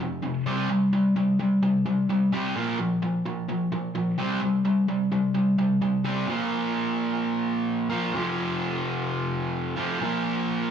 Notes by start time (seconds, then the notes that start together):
0.00 F2 C3
0.22 F2 C3
0.46 C3 G3 C4
0.70 C3 G3
0.93 C3 G3
1.16 C3 G3
1.39 C3 G3
1.62 C3 G3
1.86 C3 G3
2.09 C3 G3
2.32 C3 G3 C4
2.56 A#2 F3 A#3
2.79 A#2 F3
3.02 A#2 F3
3.25 A#2 F3
3.48 A#2 F3
3.72 A#2 F3
3.95 A#2 F3
4.18 C3 G3 C4
4.41 C3 G3
4.65 C3 G3
4.88 C3 G3
5.12 C3 G3
5.34 C3 G3
5.58 C3 G3
5.81 C3 G3
6.04 C3 G3 C4
6.27 A#2 F3 A#3
7.90 A#2 F3 A#3
8.13 F2 C3
8.17 F3
9.77 F2 C3 F3
10.01 A#2 F3 A#3